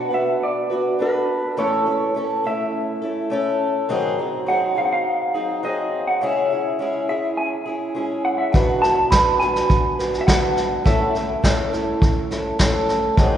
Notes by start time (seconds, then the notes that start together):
Already playing: B3 D4 F#4 F#5
0.10 B3 D4 F#4 B4 E5
0.43 D5
0.70 B3 D4 F#4 B4
0.99 B3 D4 F#4 B4
1.57 A2 E3 A3 C#4 E4 A4 C#5
1.86 A3 C#4 E4 A4
2.14 A3 C#4 E4 A4
2.44 A3 C#4 E4 A4 E5
3.02 A3 C#4 E4 A4
3.30 A3 C#4 E4 A4
3.89 G#2 D#3 F#3 C4 D#4 G#4
4.18 F#3 C4 D#4 G#4
4.46 F#3 C4 D#4 G#4 F#5
4.75 F#3 C4 D#4 G#4 F5
4.85 F#5
4.93 F5
5.34 F#3 C4 D#4 G#4
5.63 F#3 C4 D#4 G#4 D#5
6.08 F#5
6.21 C#3 G#3 C#4 E4 G#4 E5
6.51 C#4 E4 G#4
6.79 G#3 C#4 E4 G#4
7.09 C#4 E4 G#4 E5
7.37 G#5
7.66 C#4 E4 G#4
7.95 G#3 C#4 E4 G#4
8.25 F#5
8.37 E5 F#5
8.52 B2 F#3 B3 D4 F#4 B4 F#5, kick, snare
8.82 B3 D4 F#4 B4 A5, snare
9.10 B3 D4 F#4 B4 B5, kick, snare
9.40 D4 F#4 B4 G#5, snare
9.45 B3
9.55 snare
9.70 kick, snare
9.99 B3 D4 F#4 B4, snare
10.14 snare
10.21 E5
10.27 B3 D4 F#4 B4 F#5, kick, snare
10.57 snare
10.84 A2 E3 A3 C#4 E4 A4 E5, kick, snare
11.14 A3 C#4 E4 A4, snare
11.43 A3 C#4 E4 A4, kick, snare
11.71 A3 C#4 E4 A4, snare
12.02 kick, snare
12.31 A3 C#4 E4 A4, snare
12.59 A3 C#4 E4 A4, kick, snare
12.88 snare
13.17 G#2 D#3 F#3 C4 D#4 G#4, kick, snare